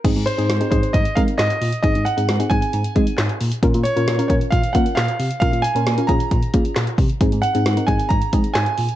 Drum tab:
CC |x---------------|----------------|----------------|----------------|
HH |xxxxxxxxxxxxxxox|xxxxxxxxxxxxxxox|xxxxxxxxxxxxxxox|xxxxxxxxxxxxxxox|
CP |------------x---|------------x---|------------x---|------------x---|
SD |----o-------o---|----o-------o---|----o-------o---|----o-------o---|
BD |o-----o-o-o-----|o-----o---o-----|o-----o-o-o-----|o-----o-o-o---o-|

CC |----------------|
HH |xxxxxxxxxxxxxxox|
CP |------------x---|
SD |----o-------o---|
BD |o-----o-o-o-----|